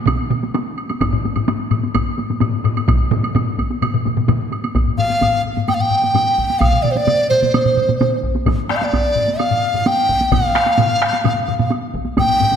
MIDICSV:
0, 0, Header, 1, 4, 480
1, 0, Start_track
1, 0, Tempo, 467654
1, 1035, Time_signature, 4, 2, 24, 8
1, 6312, Tempo, 463320
1, 12955, End_track
2, 0, Start_track
2, 0, Title_t, "Dizi"
2, 0, Program_c, 0, 73
2, 5109, Note_on_c, 0, 77, 77
2, 5556, Note_off_c, 0, 77, 0
2, 5832, Note_on_c, 0, 79, 73
2, 5893, Note_on_c, 0, 77, 69
2, 5908, Note_off_c, 0, 79, 0
2, 5961, Note_on_c, 0, 79, 82
2, 5977, Note_off_c, 0, 77, 0
2, 6770, Note_on_c, 0, 77, 79
2, 6785, Note_off_c, 0, 79, 0
2, 7010, Note_on_c, 0, 74, 69
2, 7025, Note_off_c, 0, 77, 0
2, 7101, Note_on_c, 0, 72, 62
2, 7116, Note_off_c, 0, 74, 0
2, 7159, Note_on_c, 0, 74, 79
2, 7175, Note_off_c, 0, 72, 0
2, 7493, Note_off_c, 0, 74, 0
2, 7499, Note_on_c, 0, 72, 64
2, 8427, Note_off_c, 0, 72, 0
2, 8950, Note_on_c, 0, 74, 63
2, 9019, Note_on_c, 0, 77, 59
2, 9034, Note_off_c, 0, 74, 0
2, 9097, Note_on_c, 0, 74, 76
2, 9113, Note_off_c, 0, 77, 0
2, 9671, Note_on_c, 0, 77, 76
2, 9686, Note_off_c, 0, 74, 0
2, 10164, Note_on_c, 0, 79, 86
2, 10180, Note_off_c, 0, 77, 0
2, 10636, Note_on_c, 0, 77, 78
2, 10652, Note_off_c, 0, 79, 0
2, 12074, Note_off_c, 0, 77, 0
2, 12570, Note_on_c, 0, 79, 86
2, 12955, Note_off_c, 0, 79, 0
2, 12955, End_track
3, 0, Start_track
3, 0, Title_t, "Taiko and cinematic ensemble drums"
3, 67, Note_on_c, 9, 47, 98
3, 68, Note_on_c, 9, 41, 59
3, 80, Note_on_c, 9, 48, 78
3, 170, Note_off_c, 9, 47, 0
3, 171, Note_off_c, 9, 41, 0
3, 183, Note_off_c, 9, 48, 0
3, 310, Note_on_c, 9, 47, 94
3, 321, Note_on_c, 9, 48, 52
3, 413, Note_off_c, 9, 47, 0
3, 424, Note_off_c, 9, 48, 0
3, 441, Note_on_c, 9, 48, 53
3, 544, Note_off_c, 9, 48, 0
3, 559, Note_on_c, 9, 48, 85
3, 662, Note_off_c, 9, 48, 0
3, 922, Note_on_c, 9, 48, 60
3, 1025, Note_off_c, 9, 48, 0
3, 1037, Note_on_c, 9, 41, 100
3, 1038, Note_on_c, 9, 48, 75
3, 1139, Note_off_c, 9, 41, 0
3, 1140, Note_off_c, 9, 48, 0
3, 1154, Note_on_c, 9, 45, 96
3, 1256, Note_off_c, 9, 45, 0
3, 1282, Note_on_c, 9, 48, 54
3, 1384, Note_off_c, 9, 48, 0
3, 1395, Note_on_c, 9, 45, 91
3, 1396, Note_on_c, 9, 48, 55
3, 1498, Note_off_c, 9, 45, 0
3, 1498, Note_off_c, 9, 48, 0
3, 1518, Note_on_c, 9, 48, 78
3, 1621, Note_off_c, 9, 48, 0
3, 1752, Note_on_c, 9, 45, 98
3, 1758, Note_on_c, 9, 48, 51
3, 1855, Note_off_c, 9, 45, 0
3, 1860, Note_off_c, 9, 48, 0
3, 1881, Note_on_c, 9, 48, 51
3, 1984, Note_off_c, 9, 48, 0
3, 1996, Note_on_c, 9, 48, 72
3, 1997, Note_on_c, 9, 45, 90
3, 1998, Note_on_c, 9, 41, 56
3, 2099, Note_off_c, 9, 48, 0
3, 2100, Note_off_c, 9, 45, 0
3, 2101, Note_off_c, 9, 41, 0
3, 2235, Note_on_c, 9, 48, 56
3, 2338, Note_off_c, 9, 48, 0
3, 2354, Note_on_c, 9, 45, 60
3, 2359, Note_on_c, 9, 48, 55
3, 2456, Note_off_c, 9, 45, 0
3, 2462, Note_off_c, 9, 48, 0
3, 2472, Note_on_c, 9, 45, 105
3, 2480, Note_on_c, 9, 48, 68
3, 2575, Note_off_c, 9, 45, 0
3, 2582, Note_off_c, 9, 48, 0
3, 2712, Note_on_c, 9, 45, 110
3, 2815, Note_off_c, 9, 45, 0
3, 2843, Note_on_c, 9, 48, 51
3, 2946, Note_off_c, 9, 48, 0
3, 2953, Note_on_c, 9, 45, 103
3, 2955, Note_on_c, 9, 47, 86
3, 2960, Note_on_c, 9, 41, 97
3, 2962, Note_on_c, 9, 48, 71
3, 3056, Note_off_c, 9, 45, 0
3, 3057, Note_off_c, 9, 47, 0
3, 3062, Note_off_c, 9, 41, 0
3, 3065, Note_off_c, 9, 48, 0
3, 3193, Note_on_c, 9, 47, 101
3, 3196, Note_on_c, 9, 48, 50
3, 3197, Note_on_c, 9, 45, 103
3, 3296, Note_off_c, 9, 47, 0
3, 3299, Note_off_c, 9, 45, 0
3, 3299, Note_off_c, 9, 48, 0
3, 3319, Note_on_c, 9, 48, 45
3, 3421, Note_off_c, 9, 48, 0
3, 3435, Note_on_c, 9, 45, 103
3, 3437, Note_on_c, 9, 47, 86
3, 3446, Note_on_c, 9, 48, 67
3, 3538, Note_off_c, 9, 45, 0
3, 3540, Note_off_c, 9, 47, 0
3, 3549, Note_off_c, 9, 48, 0
3, 3681, Note_on_c, 9, 41, 61
3, 3685, Note_on_c, 9, 48, 52
3, 3783, Note_off_c, 9, 41, 0
3, 3788, Note_off_c, 9, 48, 0
3, 3801, Note_on_c, 9, 48, 48
3, 3904, Note_off_c, 9, 48, 0
3, 3918, Note_on_c, 9, 45, 68
3, 3920, Note_on_c, 9, 47, 73
3, 3927, Note_on_c, 9, 48, 63
3, 4020, Note_off_c, 9, 45, 0
3, 4023, Note_off_c, 9, 47, 0
3, 4030, Note_off_c, 9, 48, 0
3, 4040, Note_on_c, 9, 45, 73
3, 4043, Note_on_c, 9, 47, 70
3, 4142, Note_off_c, 9, 45, 0
3, 4145, Note_off_c, 9, 47, 0
3, 4161, Note_on_c, 9, 48, 51
3, 4163, Note_on_c, 9, 45, 68
3, 4167, Note_on_c, 9, 47, 65
3, 4263, Note_off_c, 9, 48, 0
3, 4265, Note_off_c, 9, 45, 0
3, 4270, Note_off_c, 9, 47, 0
3, 4277, Note_on_c, 9, 48, 43
3, 4281, Note_on_c, 9, 47, 75
3, 4285, Note_on_c, 9, 45, 66
3, 4380, Note_off_c, 9, 48, 0
3, 4383, Note_off_c, 9, 47, 0
3, 4388, Note_off_c, 9, 45, 0
3, 4394, Note_on_c, 9, 48, 65
3, 4398, Note_on_c, 9, 45, 97
3, 4399, Note_on_c, 9, 47, 100
3, 4496, Note_off_c, 9, 48, 0
3, 4501, Note_off_c, 9, 45, 0
3, 4502, Note_off_c, 9, 47, 0
3, 4639, Note_on_c, 9, 48, 42
3, 4741, Note_off_c, 9, 48, 0
3, 4760, Note_on_c, 9, 48, 53
3, 4862, Note_off_c, 9, 48, 0
3, 4873, Note_on_c, 9, 41, 88
3, 4873, Note_on_c, 9, 45, 57
3, 4875, Note_on_c, 9, 48, 53
3, 4975, Note_off_c, 9, 41, 0
3, 4976, Note_off_c, 9, 45, 0
3, 4977, Note_off_c, 9, 48, 0
3, 4995, Note_on_c, 9, 45, 57
3, 5098, Note_off_c, 9, 45, 0
3, 5109, Note_on_c, 9, 45, 96
3, 5113, Note_on_c, 9, 48, 38
3, 5211, Note_off_c, 9, 45, 0
3, 5216, Note_off_c, 9, 48, 0
3, 5234, Note_on_c, 9, 48, 40
3, 5336, Note_off_c, 9, 48, 0
3, 5351, Note_on_c, 9, 41, 63
3, 5351, Note_on_c, 9, 45, 85
3, 5351, Note_on_c, 9, 48, 59
3, 5453, Note_off_c, 9, 45, 0
3, 5453, Note_off_c, 9, 48, 0
3, 5454, Note_off_c, 9, 41, 0
3, 5593, Note_on_c, 9, 45, 59
3, 5696, Note_off_c, 9, 45, 0
3, 5714, Note_on_c, 9, 45, 59
3, 5716, Note_on_c, 9, 48, 39
3, 5817, Note_off_c, 9, 45, 0
3, 5819, Note_off_c, 9, 48, 0
3, 5829, Note_on_c, 9, 48, 53
3, 5834, Note_on_c, 9, 45, 58
3, 5932, Note_off_c, 9, 48, 0
3, 5936, Note_off_c, 9, 45, 0
3, 5949, Note_on_c, 9, 45, 61
3, 6051, Note_off_c, 9, 45, 0
3, 6059, Note_on_c, 9, 45, 62
3, 6162, Note_off_c, 9, 45, 0
3, 6184, Note_on_c, 9, 45, 55
3, 6195, Note_on_c, 9, 48, 40
3, 6287, Note_off_c, 9, 45, 0
3, 6297, Note_off_c, 9, 48, 0
3, 6299, Note_on_c, 9, 45, 89
3, 6310, Note_on_c, 9, 48, 60
3, 6402, Note_off_c, 9, 45, 0
3, 6414, Note_off_c, 9, 48, 0
3, 6549, Note_on_c, 9, 41, 69
3, 6653, Note_off_c, 9, 41, 0
3, 6674, Note_on_c, 9, 48, 44
3, 6778, Note_off_c, 9, 48, 0
3, 6787, Note_on_c, 9, 48, 53
3, 6789, Note_on_c, 9, 41, 94
3, 6793, Note_on_c, 9, 47, 62
3, 6891, Note_off_c, 9, 48, 0
3, 6892, Note_off_c, 9, 41, 0
3, 6896, Note_off_c, 9, 47, 0
3, 6915, Note_on_c, 9, 47, 61
3, 7019, Note_off_c, 9, 47, 0
3, 7028, Note_on_c, 9, 48, 38
3, 7034, Note_on_c, 9, 47, 82
3, 7131, Note_off_c, 9, 48, 0
3, 7137, Note_off_c, 9, 47, 0
3, 7147, Note_on_c, 9, 48, 48
3, 7250, Note_off_c, 9, 48, 0
3, 7268, Note_on_c, 9, 47, 90
3, 7268, Note_on_c, 9, 48, 62
3, 7371, Note_off_c, 9, 48, 0
3, 7372, Note_off_c, 9, 47, 0
3, 7512, Note_on_c, 9, 47, 57
3, 7615, Note_off_c, 9, 47, 0
3, 7630, Note_on_c, 9, 47, 60
3, 7633, Note_on_c, 9, 48, 50
3, 7733, Note_off_c, 9, 47, 0
3, 7737, Note_off_c, 9, 48, 0
3, 7752, Note_on_c, 9, 47, 61
3, 7755, Note_on_c, 9, 48, 68
3, 7855, Note_off_c, 9, 47, 0
3, 7858, Note_off_c, 9, 48, 0
3, 7873, Note_on_c, 9, 47, 67
3, 7976, Note_off_c, 9, 47, 0
3, 7992, Note_on_c, 9, 47, 58
3, 8095, Note_off_c, 9, 47, 0
3, 8115, Note_on_c, 9, 47, 68
3, 8116, Note_on_c, 9, 48, 52
3, 8219, Note_off_c, 9, 47, 0
3, 8219, Note_off_c, 9, 48, 0
3, 8235, Note_on_c, 9, 47, 89
3, 8236, Note_on_c, 9, 48, 75
3, 8339, Note_off_c, 9, 47, 0
3, 8340, Note_off_c, 9, 48, 0
3, 8467, Note_on_c, 9, 41, 68
3, 8571, Note_off_c, 9, 41, 0
3, 8591, Note_on_c, 9, 48, 57
3, 8695, Note_off_c, 9, 48, 0
3, 8709, Note_on_c, 9, 45, 90
3, 8711, Note_on_c, 9, 41, 103
3, 8714, Note_on_c, 9, 48, 75
3, 8813, Note_off_c, 9, 45, 0
3, 8814, Note_off_c, 9, 41, 0
3, 8818, Note_off_c, 9, 48, 0
3, 8948, Note_on_c, 9, 37, 77
3, 8952, Note_on_c, 9, 48, 46
3, 9052, Note_off_c, 9, 37, 0
3, 9055, Note_off_c, 9, 48, 0
3, 9073, Note_on_c, 9, 48, 51
3, 9177, Note_off_c, 9, 48, 0
3, 9195, Note_on_c, 9, 41, 72
3, 9196, Note_on_c, 9, 48, 70
3, 9299, Note_off_c, 9, 41, 0
3, 9299, Note_off_c, 9, 48, 0
3, 9426, Note_on_c, 9, 45, 83
3, 9529, Note_off_c, 9, 45, 0
3, 9554, Note_on_c, 9, 48, 48
3, 9658, Note_off_c, 9, 48, 0
3, 9677, Note_on_c, 9, 48, 65
3, 9780, Note_off_c, 9, 48, 0
3, 9789, Note_on_c, 9, 45, 89
3, 9893, Note_off_c, 9, 45, 0
3, 10033, Note_on_c, 9, 45, 80
3, 10045, Note_on_c, 9, 48, 42
3, 10137, Note_off_c, 9, 45, 0
3, 10148, Note_off_c, 9, 48, 0
3, 10156, Note_on_c, 9, 48, 71
3, 10260, Note_off_c, 9, 48, 0
3, 10392, Note_on_c, 9, 41, 77
3, 10496, Note_off_c, 9, 41, 0
3, 10517, Note_on_c, 9, 48, 46
3, 10620, Note_off_c, 9, 48, 0
3, 10631, Note_on_c, 9, 41, 114
3, 10631, Note_on_c, 9, 45, 95
3, 10631, Note_on_c, 9, 47, 93
3, 10635, Note_on_c, 9, 48, 59
3, 10735, Note_off_c, 9, 41, 0
3, 10735, Note_off_c, 9, 45, 0
3, 10735, Note_off_c, 9, 47, 0
3, 10738, Note_off_c, 9, 48, 0
3, 10871, Note_on_c, 9, 37, 72
3, 10871, Note_on_c, 9, 48, 38
3, 10873, Note_off_c, 9, 37, 0
3, 10873, Note_on_c, 9, 37, 73
3, 10975, Note_off_c, 9, 48, 0
3, 10977, Note_off_c, 9, 37, 0
3, 10989, Note_on_c, 9, 48, 49
3, 11093, Note_off_c, 9, 48, 0
3, 11106, Note_on_c, 9, 48, 66
3, 11112, Note_on_c, 9, 47, 84
3, 11117, Note_on_c, 9, 45, 96
3, 11209, Note_off_c, 9, 48, 0
3, 11216, Note_off_c, 9, 47, 0
3, 11221, Note_off_c, 9, 45, 0
3, 11354, Note_on_c, 9, 37, 69
3, 11356, Note_off_c, 9, 37, 0
3, 11356, Note_on_c, 9, 37, 69
3, 11459, Note_off_c, 9, 37, 0
3, 11471, Note_on_c, 9, 48, 45
3, 11574, Note_off_c, 9, 48, 0
3, 11589, Note_on_c, 9, 48, 59
3, 11594, Note_on_c, 9, 47, 85
3, 11601, Note_on_c, 9, 45, 85
3, 11692, Note_off_c, 9, 48, 0
3, 11698, Note_off_c, 9, 47, 0
3, 11705, Note_off_c, 9, 45, 0
3, 11837, Note_on_c, 9, 47, 64
3, 11839, Note_on_c, 9, 45, 65
3, 11940, Note_off_c, 9, 47, 0
3, 11943, Note_off_c, 9, 45, 0
3, 11952, Note_on_c, 9, 45, 59
3, 11952, Note_on_c, 9, 47, 71
3, 11953, Note_on_c, 9, 48, 48
3, 12056, Note_off_c, 9, 45, 0
3, 12056, Note_off_c, 9, 47, 0
3, 12056, Note_off_c, 9, 48, 0
3, 12066, Note_on_c, 9, 48, 69
3, 12170, Note_off_c, 9, 48, 0
3, 12312, Note_on_c, 9, 41, 78
3, 12416, Note_off_c, 9, 41, 0
3, 12422, Note_on_c, 9, 48, 49
3, 12526, Note_off_c, 9, 48, 0
3, 12549, Note_on_c, 9, 48, 70
3, 12550, Note_on_c, 9, 45, 65
3, 12552, Note_on_c, 9, 41, 104
3, 12653, Note_off_c, 9, 45, 0
3, 12653, Note_off_c, 9, 48, 0
3, 12655, Note_off_c, 9, 41, 0
3, 12672, Note_on_c, 9, 45, 62
3, 12776, Note_off_c, 9, 45, 0
3, 12785, Note_on_c, 9, 48, 41
3, 12794, Note_on_c, 9, 45, 93
3, 12888, Note_off_c, 9, 48, 0
3, 12898, Note_off_c, 9, 45, 0
3, 12910, Note_on_c, 9, 48, 51
3, 12955, Note_off_c, 9, 48, 0
3, 12955, End_track
4, 0, Start_track
4, 0, Title_t, "Drums"
4, 75, Note_on_c, 9, 76, 59
4, 178, Note_off_c, 9, 76, 0
4, 558, Note_on_c, 9, 76, 41
4, 661, Note_off_c, 9, 76, 0
4, 798, Note_on_c, 9, 76, 39
4, 900, Note_off_c, 9, 76, 0
4, 918, Note_on_c, 9, 76, 44
4, 1021, Note_off_c, 9, 76, 0
4, 1038, Note_on_c, 9, 76, 51
4, 1141, Note_off_c, 9, 76, 0
4, 1393, Note_on_c, 9, 76, 41
4, 1496, Note_off_c, 9, 76, 0
4, 1519, Note_on_c, 9, 76, 44
4, 1622, Note_off_c, 9, 76, 0
4, 1756, Note_on_c, 9, 76, 42
4, 1858, Note_off_c, 9, 76, 0
4, 1997, Note_on_c, 9, 76, 56
4, 2099, Note_off_c, 9, 76, 0
4, 2476, Note_on_c, 9, 76, 45
4, 2579, Note_off_c, 9, 76, 0
4, 2720, Note_on_c, 9, 76, 39
4, 2822, Note_off_c, 9, 76, 0
4, 2844, Note_on_c, 9, 76, 46
4, 2946, Note_off_c, 9, 76, 0
4, 2961, Note_on_c, 9, 76, 57
4, 3064, Note_off_c, 9, 76, 0
4, 3326, Note_on_c, 9, 76, 46
4, 3429, Note_off_c, 9, 76, 0
4, 3446, Note_on_c, 9, 76, 43
4, 3549, Note_off_c, 9, 76, 0
4, 3685, Note_on_c, 9, 76, 44
4, 3788, Note_off_c, 9, 76, 0
4, 3925, Note_on_c, 9, 76, 55
4, 4027, Note_off_c, 9, 76, 0
4, 4400, Note_on_c, 9, 76, 42
4, 4502, Note_off_c, 9, 76, 0
4, 4644, Note_on_c, 9, 76, 41
4, 4746, Note_off_c, 9, 76, 0
4, 4762, Note_on_c, 9, 76, 46
4, 4865, Note_off_c, 9, 76, 0
4, 4881, Note_on_c, 9, 76, 37
4, 4983, Note_off_c, 9, 76, 0
4, 5361, Note_on_c, 9, 76, 36
4, 5464, Note_off_c, 9, 76, 0
4, 5834, Note_on_c, 9, 76, 49
4, 5936, Note_off_c, 9, 76, 0
4, 6314, Note_on_c, 9, 76, 36
4, 6417, Note_off_c, 9, 76, 0
4, 6791, Note_on_c, 9, 76, 49
4, 6895, Note_off_c, 9, 76, 0
4, 7269, Note_on_c, 9, 76, 40
4, 7372, Note_off_c, 9, 76, 0
4, 7753, Note_on_c, 9, 76, 50
4, 7857, Note_off_c, 9, 76, 0
4, 8236, Note_on_c, 9, 76, 34
4, 8340, Note_off_c, 9, 76, 0
4, 8710, Note_on_c, 9, 76, 39
4, 8813, Note_off_c, 9, 76, 0
4, 9197, Note_on_c, 9, 76, 39
4, 9300, Note_off_c, 9, 76, 0
4, 9672, Note_on_c, 9, 76, 45
4, 9776, Note_off_c, 9, 76, 0
4, 10155, Note_on_c, 9, 76, 31
4, 10258, Note_off_c, 9, 76, 0
4, 10633, Note_on_c, 9, 76, 44
4, 10736, Note_off_c, 9, 76, 0
4, 11114, Note_on_c, 9, 76, 34
4, 11218, Note_off_c, 9, 76, 0
4, 11594, Note_on_c, 9, 76, 45
4, 11697, Note_off_c, 9, 76, 0
4, 11833, Note_on_c, 9, 76, 28
4, 11936, Note_off_c, 9, 76, 0
4, 12078, Note_on_c, 9, 76, 32
4, 12181, Note_off_c, 9, 76, 0
4, 12556, Note_on_c, 9, 76, 45
4, 12659, Note_off_c, 9, 76, 0
4, 12955, End_track
0, 0, End_of_file